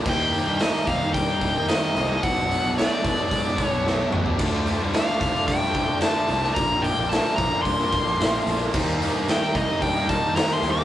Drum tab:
CC |x---------------|----------------|x---------------|----------------|
HH |--o-o-o-o-o-o-o-|o-o-o-o-o-o-----|--o-o-o-o-o-o-o-|o-o-o-o-o-o-o-o-|
SD |----o-------o---|----o-------o---|----o-------o--o|----o-------o---|
T2 |----------------|--------------o-|----------------|----------------|
FT |----------------|---------------o|----------------|----------------|
BD |o-----o-o-o-----|o-----o-o-o-----|o-----o-o-o-----|o-----o-o-o-----|

CC |x---------------|
HH |--o-o-o-o-o-o-o-|
SD |----o-------o---|
T2 |----------------|
FT |----------------|
BD |o-----o-o-o-----|